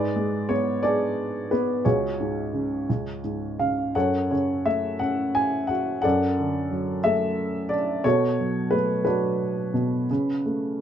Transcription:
0.00 1.81 G#2 medium
0.00 0.80 G#4 medium
0.00 0.79 B4 medium
0.00 0.51 D5 medium
0.16 1.47 G#3 soft
0.49 1.51 B3 soft
0.49 0.81 C#5 medium
0.83 1.82 D4 soft
0.83 1.81 G#4 soft
0.83 1.50 B4 soft
0.83 1.53 D5 medium
1.51 1.85 B3 soft
1.51 1.83 B4 medium
1.85 2.86 C#2 medium
1.85 3.20 F#4 soft
1.85 3.20 G#4 soft
1.85 3.20 C#5 medium
2.20 2.87 G#2 soft
2.53 2.87 C#3 soft
2.89 3.92 C#2 soft
3.24 3.93 G#2 soft
3.59 3.94 C#3 soft
3.59 3.93 F5 medium
3.95 6.01 F#2 soft
3.95 4.98 A4 medium
3.95 4.30 C#5 medium
3.95 4.32 F#5 medium
4.31 5.67 C#3 soft
4.31 4.67 C#5 medium
4.65 6.00 A3 soft
4.65 5.02 E5 medium
4.99 6.01 C#4 soft
4.99 5.36 F#5 medium
5.35 5.71 G#5 medium
5.67 6.03 F#4 soft
5.67 6.00 F#5 medium
6.02 8.01 F#2 medium
6.02 7.00 A4 medium
6.02 7.00 D5 medium
6.02 6.99 F#5 medium
6.39 7.67 D3 soft
6.71 8.01 F#3 soft
7.04 8.02 A3 soft
7.04 8.01 A4 soft
7.04 7.72 E5 medium
7.69 8.04 D4 medium
7.69 8.01 D5 medium
8.04 9.72 B2 medium
8.04 9.03 F#4 medium
8.04 9.03 A4 medium
8.04 8.74 C#5 medium
8.40 9.05 F#3 soft
8.71 10.05 A3 soft
8.71 9.03 B4 medium
9.05 10.06 F#3 soft
9.05 10.81 D4 soft
9.05 10.81 F#4 soft
9.05 10.81 B4 medium
9.74 10.08 B2 medium
10.11 10.81 C#3 medium
10.46 10.81 A3 soft

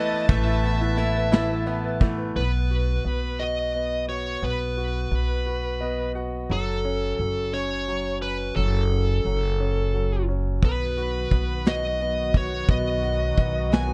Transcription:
0.00 0.25 A1 medium
0.00 0.28 E3 medium
0.00 0.29 A3 medium
0.00 0.62 B3 soft
0.00 0.46 E4 medium
0.00 0.96 E4 medium
0.00 2.33 E4 medium
0.00 0.11 B4 medium
0.00 2.32 B4 medium
0.00 0.25 D#5 loud
0.00 0.27 A5 medium
0.00 2.01 A5 medium
0.11 0.63 B4 medium
0.28 2.32 A1 medium
0.28 1.31 E3 medium
0.28 0.96 A3 medium
0.28 1.97 E5 medium
0.28 2.33 A5 medium
0.28 kick loud
0.28 ride medium
0.46 0.79 E4 medium
0.63 1.67 B3 medium
0.63 1.14 B4 medium
0.63 ride soft
0.81 1.30 E4 medium
0.98 2.00 A3 medium
0.98 2.43 E4 medium
0.98 ride medium
1.15 1.48 B4 medium
1.32 2.00 E3 medium
1.32 1.65 E4 medium
1.32 snare loud
1.32 ride medium
1.50 1.83 B4 soft
1.66 2.93 B3 medium
1.66 2.34 E4 soft
1.66 ride soft
1.84 2.16 B4 soft
2.00 2.43 E3 medium
2.00 2.35 A3 medium
2.00 kick medium
2.00 ride medium
2.18 2.35 B4 medium
2.36 3.01 B1 medium
2.36 3.03 B3 soft
2.36 3.43 B4 medium
2.71 3.38 F#4 soft
3.05 4.39 B1 medium
3.05 3.73 B3 soft
3.39 4.07 F#4 soft
3.39 4.04 D#5 medium
3.74 4.41 B3 soft
4.09 4.76 F#4 soft
4.09 4.44 C#5 medium
4.43 5.08 B1 medium
4.43 5.10 B3 medium
4.43 6.12 B4 medium
4.77 5.45 F#4 soft
5.11 6.45 B1 medium
5.11 5.79 B3 soft
5.46 6.14 F#4 soft
5.81 6.48 B3 soft
5.81 6.13 D#5 medium
6.15 6.48 F#4 soft
6.15 6.47 F#5 medium
6.50 7.14 F#1 medium
6.50 7.18 F#3 medium
6.50 7.57 A4 medium
6.85 7.52 C#4 soft
7.19 8.52 F#1 medium
7.19 7.86 F#3 soft
7.53 8.20 C#4 soft
7.53 8.18 C#5 medium
7.88 8.55 F#3 soft
8.22 8.89 C#4 soft
8.22 8.56 B4 medium
8.56 9.21 F#1 medium
8.56 9.24 F#3 medium
8.56 10.24 A4 medium
8.91 9.58 C#4 soft
9.25 10.59 F#1 medium
9.25 9.92 F#3 soft
9.60 10.27 C#4 soft
9.94 10.61 F#3 soft
10.29 10.62 C#4 soft
10.63 11.27 B1 medium
10.63 13.93 D#3 medium
10.63 13.93 F#3 medium
10.63 11.31 B3 medium
10.63 13.93 B3 medium
10.63 13.93 F#4 medium
10.63 11.70 B4 medium
10.63 kick medium
10.63 closed hi-hat medium
10.97 11.65 F#4 soft
10.97 closed hi-hat soft
11.31 12.65 B1 medium
11.31 11.99 B3 soft
11.31 kick medium
11.31 closed hi-hat soft
11.65 12.33 F#4 medium
11.65 12.37 D#5 medium
11.65 snare loud
11.65 closed hi-hat medium
11.99 12.67 B3 soft
11.99 closed hi-hat soft
12.33 13.02 F#4 soft
12.33 12.70 C#5 medium
12.33 kick medium
12.33 closed hi-hat soft
12.68 13.34 B1 medium
12.68 13.36 B3 medium
12.68 13.76 D#5 medium
12.68 kick loud
12.68 closed hi-hat medium
13.03 13.71 F#4 soft
13.03 closed hi-hat soft
13.37 13.93 B1 medium
13.37 13.93 B3 soft
13.37 kick medium
13.37 closed hi-hat soft
13.72 13.93 F#4 medium
13.72 13.93 G#5 medium
13.72 snare medium
13.72 closed hi-hat medium

